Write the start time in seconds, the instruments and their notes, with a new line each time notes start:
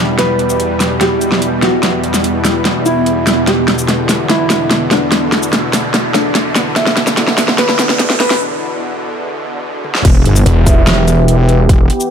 Already playing: supersaw synth E2 B2 G3, ambient pad B3 E4 E5 B5, felt piano D4
0.18 felt piano B4, snare, closed hi-hat
0.39 closed hi-hat
0.50 shaker
0.60 closed hi-hat
0.80 snare, closed hi-hat, shaker
1.01 felt piano G4, snare, closed hi-hat
1.21 closed hi-hat, shaker
1.32 snare
1.42 closed hi-hat
1.62 felt piano F#4, snare, closed hi-hat
1.83 snare, closed hi-hat
2.04 closed hi-hat
2.14 snare, shaker
2.24 closed hi-hat
2.45 snare, closed hi-hat, shaker
2.65 snare, closed hi-hat
2.86 felt piano E4, closed hi-hat, shaker
3.06 closed hi-hat
3.27 snare, closed hi-hat, shaker
3.47 supersaw synth D3, felt piano G4, snare, closed hi-hat, riser
3.68 snare, closed hi-hat
3.78 shaker
3.89 snare, closed hi-hat
4.09 snare, open hi-hat, shaker
4.30 felt piano E4, snare, closed hi-hat
4.50 snare, closed hi-hat, shaker
4.71 snare, closed hi-hat
4.91 felt piano D4, snare, closed hi-hat
5.12 snare, closed hi-hat
5.32 snare, closed hi-hat
5.43 shaker
5.53 snare, closed hi-hat
5.73 snare, open hi-hat, shaker
5.94 snare, closed hi-hat
6.14 felt piano D4, snare, closed hi-hat, shaker
6.35 snare, closed hi-hat
6.56 snare, closed hi-hat, shaker
6.76 felt piano E5, snare, closed hi-hat
6.87 snare
6.97 snare, closed hi-hat
7.07 snare, shaker
7.17 snare, closed hi-hat
7.28 snare
7.38 snare, open hi-hat, shaker
7.48 snare
7.58 felt piano B4, snare, closed hi-hat
7.69 snare
7.79 snare, closed hi-hat, shaker
7.89 snare
7.99 snare, closed hi-hat
8.10 snare
8.20 felt piano B4, snare, closed hi-hat
8.30 snare
9.84 high tom
9.95 snare
10.05 wobble bass E1, supersaw synth E3 B3 G4, kick, closed hi-hat, crash
10.25 wobble bass G1, closed hi-hat
10.36 shaker
10.46 detuned saw bass E1, closed hi-hat
10.67 brass ensemble E4 B4 E5, kick, open hi-hat, shaker
10.87 wobble bass E1, snare, closed hi-hat
11.08 closed hi-hat, shaker
11.28 closed hi-hat
11.39 brass ensemble E4 B4 E5
11.49 closed hi-hat
11.69 wobble bass E1, kick, closed hi-hat
11.90 closed hi-hat
12.00 shaker